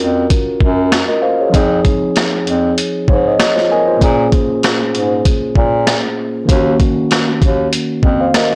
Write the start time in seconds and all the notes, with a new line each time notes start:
Already playing: C#4 F4 F#4 A#4
0.00 F2, closed hi-hat
0.30 kick, closed hi-hat
0.60 F#2, kick
0.92 cross-stick, snare, closed hi-hat
1.08 A#4 D#5
1.22 C5 F5
1.41 G#4 C#5
1.50 F3 C4
1.54 F2 D#4 G#4, kick, closed hi-hat
1.85 kick, closed hi-hat
2.16 cross-stick, snare, closed hi-hat
2.47 F2, closed hi-hat
2.78 closed hi-hat
3.08 G#2 C#5, kick
3.28 D#5
3.40 D#5, cross-stick, snare, closed hi-hat
3.56 F4 C5, snare
3.71 A#4 D#5 G#5
3.87 F4 C5
3.96 A#2 A#3
4.01 A#2 C#4 G#4, kick, closed hi-hat
4.32 kick, closed hi-hat
4.63 cross-stick, snare, closed hi-hat
4.95 G#2, closed hi-hat
5.25 kick, closed hi-hat
5.55 A#2, kick
5.87 cross-stick, snare, closed hi-hat
6.45 D#3 A#3, kick
6.49 D#2 C#4 F#4, closed hi-hat
6.80 kick, closed hi-hat
7.11 cross-stick, snare, closed hi-hat
7.42 D#2, kick, closed hi-hat
7.73 closed hi-hat
8.03 F2, kick
8.20 C5 F5
8.34 A#4 D#5, cross-stick, snare, closed hi-hat